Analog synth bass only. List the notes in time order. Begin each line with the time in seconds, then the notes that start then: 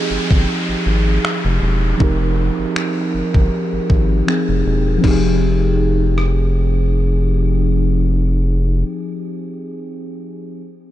0.10 G1
0.31 G1
0.69 G#1
0.86 G#1
1.45 F1
1.62 E1
2.00 F1
2.59 G1
3.14 G1
3.35 G1
3.73 G#1
3.90 G#1
4.49 F1
4.66 E1
5.04 F1